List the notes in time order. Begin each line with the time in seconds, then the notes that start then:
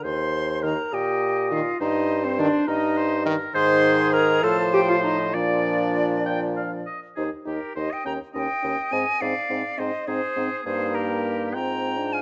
0.04 D#2 C5 C6
0.63 D#3 A#4 A#5
0.93 A#2 G4 D#5 G5
1.51 D#3 F4 F5
1.80 G2 D#4 C5 D#5
2.24 C4 C5
2.39 D#3 D4 D5
2.67 G2 D#4 A#4 D#5
2.97 C5
3.26 D#3 A#4
3.54 G#2 D#3 G#4 C5 C6
4.13 A#4 A#5
4.43 A2 F3 A4 C5 A5
4.74 G4 G5
4.89 F4 F5
5.04 D#4 D#5
5.34 A#2 F3 D4 D5
6.26 G5
6.56 F5
6.86 D#5
7.16 D#2 D#4 G4 G#4 C5
7.45 D#2 D#4 G4 A#4
7.75 D#2 D#4 G4 C5 D#5
7.91 D#5 G5
8.05 D#2 C#4 D#4 G5 A#5
8.34 D#2 C#4 D#4 D#5 G5
8.63 D#2 C#4 D#4
8.91 G#2 C4 D#4 D#5 G#5
9.20 G#2 C4 D#4 D5 F5
9.49 G#2 C4 D#4
9.78 G#2 C4 D#4 C5 D#5
10.07 G#2 C4 D#4 G#4 C5
10.36 G#2 C4 D#4
10.65 G2 A#3 D#4 G#4 C5
10.94 G4 A#4
11.54 G#2 C4 F4 G5 A#5
11.98 D4
12.13 F5 G#5